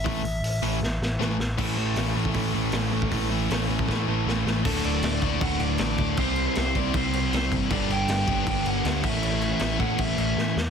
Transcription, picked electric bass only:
X:1
M:4/4
L:1/8
Q:1/4=157
K:Amix
V:1 name="Picked electric bass" clef=bass
A,,, A,,, A,,, A,,, A,,, A,,, A,,, A,,, | A,,,2 A,,, A,,, A,,, A,,, A,,, A,,, | A,,,2 A,,, A,,, A,,, A,,, A,,, A,,, | D,,, D,,, D,,, D,,, D,,, D,,, A,,, D,,, |
=C,,2 C,, C,, C,, C,, C,, G,,, | G,,, G,,, G,,, G,,, G,,, G,,, D,, A,,, | A,,,2 A,,, A,,, A,,, A,,, A,, E,, |]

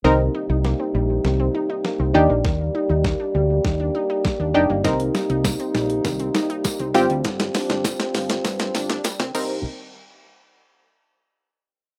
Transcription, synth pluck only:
X:1
M:4/4
L:1/16
Q:1/4=100
K:Cm
V:1 name="Synth pluck"
[CEB]4 z8 z2 [DEG]2- | [DEG]4 z8 z2 [DEG] z | [CEB]4 z8 z2 [CFG]2- | [CFG]4 z8 z2 [CEB]2 |
z16 |]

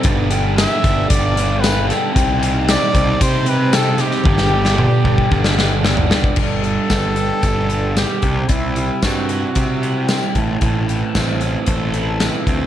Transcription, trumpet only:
X:1
M:4/4
L:1/8
Q:1/4=114
K:G
V:1 name="Trumpet"
z2 e2 d2 B A | z2 d2 c B A G- | G6 z2 | A6 G2 |
E2 F4- F z | z8 |]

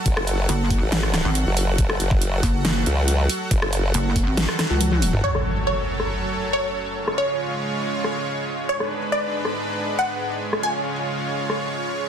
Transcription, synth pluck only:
X:1
M:4/4
L:1/8
Q:1/4=139
K:F#m
V:1 name="Synth pluck"
z8 | z8 | z8 | c z c4 c2- |
c c6- c | c z d4 f2- | f g6- g |]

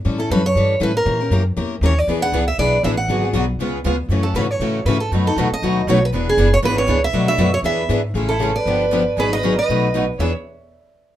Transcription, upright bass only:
X:1
M:4/4
L:1/8
Q:"Swing" 1/4=237
K:Emix
V:1 name="Upright bass" clef=bass
A,,2 F,,2 =G,,2 A,,2 | ^A,,2 F,,2 E,,2 ^D,,2 | E,,2 C,,2 B,,,2 A,,,2 | G,,,2 B,,,2 C,,2 D,,2 |
F,,2 G,,2 A,,2 G,,2 | F,,2 E,, z ^D,,2 B,,,2 | E,,,2 F,,,2 G,,,2 C,,2 | B,,,2 F,,2 E,,2 G,,2 |
A,,,4 =G,,,4 | G,,,4 B,,,4 | E,, z6 z |]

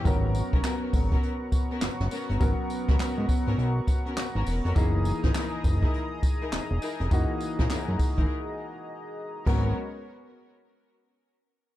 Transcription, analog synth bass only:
X:1
M:4/4
L:1/16
Q:"Swing 16ths" 1/4=102
K:G#m
V:1 name="Analog synth bass" clef=bass
G,,,3 B,,, z2 G,,,2 z4 F,,, F,,, z =G,,, | G,,, z2 C,, G,, G,, z G,,, B,,,2 z3 G,,, E,,, ^E,,, | F,,,3 G,,, z2 F,,,2 z4 E,,, E,,, z ^E,,, | F,,, z2 A,,, F,, F,, z G,,, z8 |
G,,,2 z12 z2 |]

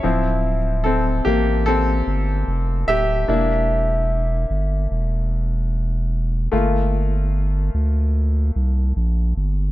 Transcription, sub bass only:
X:1
M:4/4
L:1/8
Q:1/4=74
K:Dm
V:1 name="Sub bass" clef=bass
D,,,3 A,,,2 G,,, F,,, D,,, | E,,,3 G,,, E,,,4 | G,,,3 D,,2 C,, B,,, G,,, |]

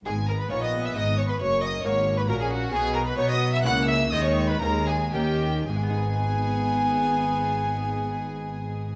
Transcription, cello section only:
X:1
M:3/4
L:1/8
Q:1/4=124
K:G#m
V:1 name="Cello section" clef=bass
G,,2 A,,2 G,,2 | F,,2 G,,2 A,,2 | B,,2 B,2 C,2 | D,2 D,,2 D,2 |
G,,6- | G,,6 |]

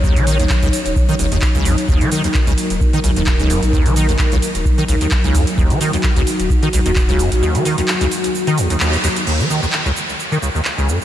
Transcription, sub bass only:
X:1
M:4/4
L:1/16
Q:"Swing 16ths" 1/4=130
K:Ebm
V:1 name="Sub bass" clef=bass
B,,,4 z B,,, z E,,, z2 G,,, G,,, z2 B,,, z | E,,, z4 B,,, z E,,, z2 B,,, E,,,4 B,,,- | B,,,4 z B,,, z E,,, z2 B,,, z3 D,, z | E,,, z4 B,,, z E,,, z2 B,,, E,,,4 B,,, |
z16 | z16 |]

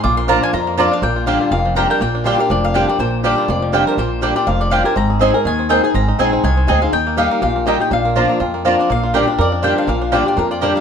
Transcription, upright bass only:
X:1
M:4/4
L:1/8
Q:"Swing" 1/4=244
K:Bbmix
V:1 name="Upright bass" clef=bass
B,,,4 F,,4 | B,,,4 F,,,4 | B,,,4 F,,,4 | B,,,4 F,,,4 |
B,,,4 F,,,4 | A,,,4 E,,4 | A,,,2 B,,,2 C,,2 D,,2 | E,,4 B,,,4 |
B,,,4 F,,4 | B,,,4 F,,4 | B,,,4 F,,4 |]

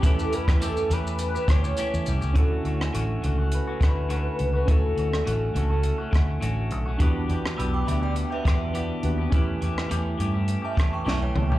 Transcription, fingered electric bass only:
X:1
M:4/4
L:1/16
Q:"Swing 16ths" 1/4=103
K:D
V:1 name="Fingered electric bass" clef=bass
E,,2 z E,,2 z E,,4 D,,2 z E,, =C,, ^C,, | D,,2 D,,2 A,,,2 C,,3 z D,,4 C,,2 | D,,2 D,,2 A,,,2 C,,3 z D,,2 A,,,2 B,,,2 | E,,2 E,,2 B,,,2 D,,3 z E,,4 _E,,2 |
E,,2 E,,2 E,,2 G,,3 z E,,2 B,,,2 C,,2 |]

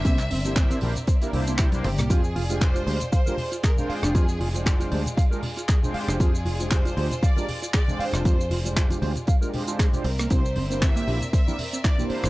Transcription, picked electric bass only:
X:1
M:4/4
L:1/16
Q:"Swing 16ths" 1/4=117
K:Fdor
V:1 name="Picked electric bass" clef=bass
C,,2 G,,,4 B,,, z3 C,,4 G,,, C,, | F,,2 F,,,4 D,, z8 F,,, | F,,2 F,,,4 D,, z8 F,,, | F,,2 F,,,4 D,, z8 F,,, |
F,,2 F,,,4 D,, z6 z C,,2 | C,,2 G,,,4 B,,, z8 G,,, |]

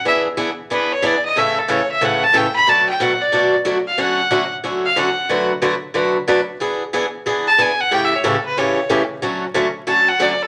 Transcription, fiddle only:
X:1
M:4/4
L:1/8
Q:"Swing" 1/4=183
K:D
V:1 name="Fiddle"
e z3 B c d _e | e A c e f a g b | a g f d2 z2 =f | f3 z2 =f ^f2- |
f z6 z | z4 z a ^g f | (3g e c A B c2 z2 | z4 a f d A |]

